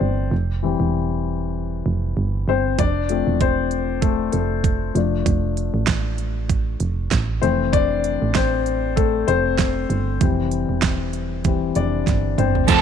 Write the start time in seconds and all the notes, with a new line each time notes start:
Already playing: E3 A3 C4 D4 C5 D5
0.01 G1
0.31 F1
0.63 E3 G3 C4
0.80 E1
1.86 F1
2.17 G1
2.48 G1 C4 C5
2.78 F1 D4 D5, kick, closed hi-hat
3.09 F3 A3 C4, closed hi-hat
3.27 E1
3.41 C4 C5, kick, closed hi-hat
3.71 closed hi-hat
4.01 A3 A4, kick, closed hi-hat
4.32 F1 A3 A4, closed hi-hat
4.64 kick, closed hi-hat
4.95 F1 F3 A3 D4, closed hi-hat
5.26 F1, kick, closed hi-hat
5.57 closed hi-hat
5.74 A1
5.87 kick, snare, closed hi-hat
6.18 closed hi-hat
6.50 kick, closed hi-hat
6.80 F1, closed hi-hat
7.11 A1, kick, snare, closed hi-hat
7.42 F1 E3 A3 C4 C5, closed hi-hat
7.73 D4 D5, kick, closed hi-hat
8.04 closed hi-hat
8.22 A1
8.35 C4 C5, kick, snare, closed hi-hat
8.66 closed hi-hat
8.96 A3 A4, kick, closed hi-hat
9.28 F1 C4 C5, closed hi-hat
9.59 kick, snare, closed hi-hat
9.90 G1, closed hi-hat
10.21 F1 E3 G3 C4, kick, closed hi-hat
10.51 closed hi-hat
10.69 E1
10.82 kick, snare, closed hi-hat
11.13 closed hi-hat
11.44 E3 G3 C4, kick, closed hi-hat
11.75 F1 D4 D5, closed hi-hat
12.07 G1, kick, snare, closed hi-hat
12.38 G1 C4 C5, closed hi-hat, mid tom
12.55 floor tom
12.68 F1 F2 C3 F3 A3 C4 A4 A5, kick, closed hi-hat, crash, shaker